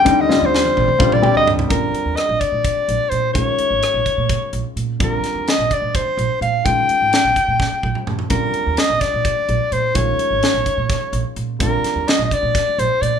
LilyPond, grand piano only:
\new Staff \with { instrumentName = "Grand piano" } { \time 7/8 \key bes \major \tempo 4 = 127 <d g c' ees'>8 <d g c' f'>4~ <d g c' f'>16 r16 <d g c' f'>8 <d g c' g'>4 | \key bes \mixolydian <d g c' f'>2.~ <d g c' f'>8 | <ees aes des' f'>2.~ <ees aes des' f'>8 | <d g c' f'>2.~ <d g c' f'>8 |
<ees aes des' f'>2.~ <ees aes des' f'>8 | <d g c' f'>2.~ <d g c' f'>8 | <ees aes des' f'>2.~ <ees aes des' f'>8 | <d g c' f'>2.~ <d g c' f'>8 | }